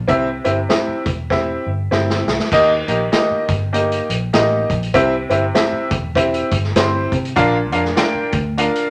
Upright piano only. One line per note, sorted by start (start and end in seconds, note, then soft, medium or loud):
0.08 1.01 C3 medium
0.08 0.27 C4 medium
0.08 0.27 E4 medium
0.08 0.27 G4 loud
0.08 0.27 E5 loud
0.44 0.57 C4 medium
0.44 0.57 E4 medium
0.44 0.57 G4 medium
0.44 0.58 E5 medium
0.69 1.06 C4 medium
0.69 1.06 E4 medium
0.69 1.07 G4 medium
0.69 1.07 E5 medium
1.30 1.67 C4 medium
1.30 1.67 E4 medium
1.30 1.68 G4 medium
1.30 1.68 E5 medium
1.91 2.28 C4 medium
1.91 2.28 E4 medium
1.91 2.28 G4 medium
1.91 2.28 E5 medium
2.52 3.45 D#3 medium
2.52 2.71 A#3 loud
2.52 2.71 D#4 loud
2.52 2.71 G4 medium
2.52 2.71 D#5 loud
2.88 3.00 A#3 medium
2.88 3.00 D#4 medium
2.88 3.01 G4 medium
2.88 3.01 D#5 medium
3.12 3.49 A#3 medium
3.12 3.49 D#4 medium
3.12 3.50 G4 medium
3.12 3.50 D#5 medium
3.73 4.10 A#3 medium
3.73 4.10 D#4 medium
3.73 4.10 G4 medium
3.73 4.10 D#5 medium
4.33 4.70 A#3 medium
4.33 4.70 D#4 medium
4.33 4.71 G4 medium
4.33 4.71 D#5 medium
4.94 5.87 C3 medium
4.94 5.13 C4 loud
4.94 5.13 E4 medium
4.94 5.13 G4 loud
4.94 5.13 E5 loud
5.29 5.42 C4 medium
5.29 5.43 E4 medium
5.29 5.43 G4 medium
5.29 5.43 E5 medium
5.54 5.92 C4 medium
5.54 5.92 E4 medium
5.54 5.92 G4 medium
5.54 5.92 E5 loud
6.16 6.52 C4 medium
6.16 6.53 E4 medium
6.16 6.53 G4 medium
6.16 6.53 E5 medium
6.76 7.13 C4 medium
6.76 7.13 E4 medium
6.76 7.13 G4 medium
6.76 7.13 C5 loud
7.36 8.29 A#2 medium
7.36 7.55 D4 loud
7.36 7.55 F4 loud
7.36 7.55 A#4 medium
7.36 7.55 F5 loud
7.72 7.85 D4 medium
7.72 7.85 F4 medium
7.72 7.85 A#4 medium
7.72 7.85 F5 medium
7.96 8.34 D4 medium
7.96 8.34 F4 medium
7.96 8.34 A#4 medium
7.96 8.34 G5 loud
8.58 8.90 D4 medium
8.58 8.90 F4 medium
8.58 8.90 A#4 medium
8.58 8.90 F5 medium